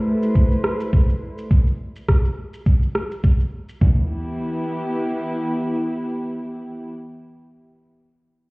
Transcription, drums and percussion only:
0.23 shaker medium
0.35 kick loud
0.35 shaker medium
0.52 shaker soft
0.64 cross-stick medium
0.80 shaker medium
0.93 kick loud
0.93 shaker medium
1.09 shaker soft
1.38 shaker medium
1.51 kick loud
1.51 shaker soft
1.67 shaker soft
1.96 shaker medium
2.08 kick loud
2.08 cross-stick medium
2.08 shaker medium
2.25 shaker soft
2.54 shaker medium
2.66 kick loud
2.66 shaker medium
2.82 shaker soft
2.95 cross-stick medium
3.11 shaker medium
3.24 kick medium
3.24 shaker soft
3.40 shaker soft
3.69 shaker medium
3.81 kick medium
3.81 floor tom medium

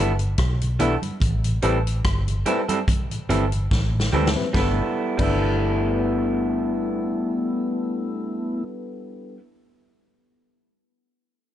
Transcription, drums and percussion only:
0.19 closed hi-hat soft
0.38 kick loud
0.38 cross-stick loud
0.38 closed hi-hat medium
0.61 closed hi-hat soft
0.80 closed hi-hat medium
0.80 high conga medium
0.80 low conga medium
1.02 closed hi-hat soft
1.02 high conga soft
1.20 kick loud
1.20 closed hi-hat medium
1.20 low conga medium
1.44 closed hi-hat medium
1.62 closed hi-hat medium
1.87 closed hi-hat soft
2.05 kick loud
2.05 cross-stick loud
2.05 closed hi-hat medium
2.05 high conga soft
2.28 closed hi-hat soft
2.46 closed hi-hat medium
2.46 high conga soft
2.69 closed hi-hat medium
2.69 high conga medium
2.88 kick loud
2.88 closed hi-hat medium
2.88 high conga soft
2.88 low conga medium
3.11 closed hi-hat soft
3.29 closed hi-hat medium
3.29 low conga medium
3.52 closed hi-hat soft
3.71 kick loud
3.71 snare medium
4.00 snare medium
4.13 high conga medium
4.13 low conga medium
4.27 snare loud
4.35 high conga soft
4.54 kick loud
4.54 snare medium
4.54 low conga medium
5.19 kick medium
5.19 crash medium
5.19 low conga medium

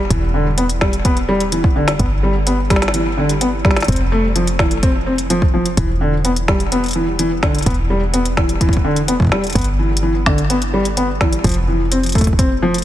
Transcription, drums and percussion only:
0.10 kick loud
0.10 closed hi-hat medium
0.58 closed hi-hat medium
0.69 closed hi-hat medium
0.81 kick loud
0.81 snare loud
0.93 closed hi-hat soft
1.05 kick loud
1.05 closed hi-hat medium
1.17 closed hi-hat soft
1.40 closed hi-hat soft
1.52 closed hi-hat medium
1.64 kick loud
1.88 snare loud
1.88 closed hi-hat medium
1.99 kick loud
1.99 closed hi-hat medium
2.47 closed hi-hat medium
2.70 kick loud
2.70 snare medium
2.70 closed hi-hat soft
2.76 snare medium
2.82 snare medium
2.82 closed hi-hat soft
2.88 snare loud
2.94 closed hi-hat medium
3.29 closed hi-hat soft
3.41 closed hi-hat medium
3.65 kick loud
3.65 snare medium
3.71 snare medium
3.76 snare medium
3.76 closed hi-hat soft
3.80 snare medium
3.80 closed hi-hat soft
3.84 closed hi-hat soft
3.88 kick loud
3.88 closed hi-hat medium
3.92 closed hi-hat soft
3.96 closed hi-hat soft
4.36 closed hi-hat medium
4.47 closed hi-hat soft
4.59 kick loud
4.59 snare loud
4.71 closed hi-hat soft
4.83 kick loud
4.83 closed hi-hat medium
5.18 closed hi-hat soft
5.30 closed hi-hat medium
5.42 kick loud
5.66 closed hi-hat soft
5.77 kick loud
5.77 closed hi-hat medium
6.25 closed hi-hat medium
6.36 closed hi-hat soft
6.48 kick loud
6.48 snare loud
6.60 closed hi-hat soft
6.72 closed hi-hat medium
6.84 closed hi-hat soft
6.86 closed hi-hat soft
6.88 closed hi-hat soft
6.91 closed hi-hat soft
6.93 closed hi-hat soft
7.19 closed hi-hat medium
7.43 kick loud
7.43 snare loud
7.55 closed hi-hat soft
7.59 closed hi-hat soft
7.62 kick loud
7.62 closed hi-hat soft
7.66 closed hi-hat medium
7.70 closed hi-hat soft
7.74 closed hi-hat soft
8.14 closed hi-hat medium
8.25 closed hi-hat soft
8.37 kick loud
8.37 snare loud
8.49 closed hi-hat soft
8.61 kick loud
8.61 closed hi-hat medium
8.69 kick medium
8.73 kick medium
8.73 closed hi-hat soft
8.96 closed hi-hat soft
9.08 closed hi-hat medium
9.20 kick loud
9.22 kick medium
9.25 kick medium
9.27 kick medium
9.29 kick soft
9.29 snare loud
9.44 closed hi-hat soft
9.47 closed hi-hat soft
9.50 closed hi-hat soft
9.53 kick loud
9.53 closed hi-hat soft
9.56 closed hi-hat medium
9.58 closed hi-hat soft
9.61 closed hi-hat soft
9.64 closed hi-hat soft
9.97 closed hi-hat medium
10.26 kick loud
10.26 snare loud
10.38 closed hi-hat soft
10.50 closed hi-hat medium
10.62 closed hi-hat soft
10.85 closed hi-hat soft
10.97 closed hi-hat medium
11.21 kick loud
11.21 snare loud
11.33 closed hi-hat soft
11.44 kick loud
11.44 closed hi-hat medium
11.47 closed hi-hat medium
11.49 closed hi-hat soft
11.52 closed hi-hat soft
11.54 closed hi-hat soft
11.92 closed hi-hat medium
12.03 closed hi-hat soft
12.06 closed hi-hat soft
12.09 closed hi-hat soft
12.12 kick loud
12.12 closed hi-hat soft
12.15 closed hi-hat soft
12.18 kick medium
12.18 closed hi-hat soft
12.21 closed hi-hat soft
12.24 kick medium
12.24 closed hi-hat soft
12.27 closed hi-hat soft
12.33 kick medium
12.39 kick loud
12.39 closed hi-hat medium
12.74 closed hi-hat soft
12.78 closed hi-hat soft

